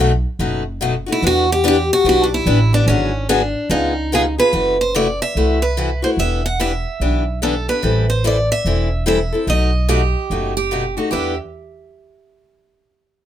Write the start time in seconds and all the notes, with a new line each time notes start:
Already playing: B1
0.00 B2 F#3 A3 D#4 F#4
0.39 F#1 B2 F#3 A3 D#4 F#4
0.81 B2 F#3 A3 D#4 F#4
1.06 A3 D#4 F#4
1.12 E4
1.22 E2 E3 B3 D4 G4
1.27 F#4
1.52 G4
1.64 E3 B3 D4 G4
1.68 G4
1.93 F#4
2.04 B1 E3 B3 D4 G4
2.09 F#4
2.24 D4
2.34 E4
2.46 A1 E3 B3 D4 G4
2.73 B3 D4 G4
2.86 G#1 D3 F#3 B3 C#4 F#4 G#4
3.29 D3 F#3 B3 D4 F#4 G#4
3.70 C#2 C#3 G#3 B3 D#4 F4 G#4
4.12 C#3 G#3 B3 F4 G#4
4.38 B3 F4 G#4 B4
4.53 F#1 C3 E3 A3 E4 F#4
4.81 C5
4.95 C3 E3 A3 E4 F#4 D5
5.22 E5
5.35 C2 C3 E3 A3 E4 F#4
5.62 B4
5.77 C3 E3 A3 E4 F#4
6.02 A3 E4 F#4 C5
6.17 E1 E3 B3 D4 G4 E5
6.46 F#5
6.60 E3 B3 D4 G4 E5
7.00 B1 E3 B3 D4 G4
7.42 E3 B3 D4 G4 A4
7.68 B3 D4 G4 B4
7.82 A1 E3 G3 C4 E4 A4
8.10 C5
8.24 E3 G3 C4 E4 A4 D5
8.52 E5
8.65 E1 E3 G3 C4 E4 A4
9.06 E3 G3 C4 E4 A4 E5
9.32 C4 E4 A4
9.47 B1 B2 F#3 A3 D#4 F#4 D#5
9.89 B2 F#3 A3 D#4 F#4 G4
10.30 F#1 B2 F#3 A3 D#4 F#4
10.57 G4
10.71 B2 F#3 A3 D#4 F#4
10.97 A3 D#4 F#4
11.11 E2 E3 B3 D4 G4 E5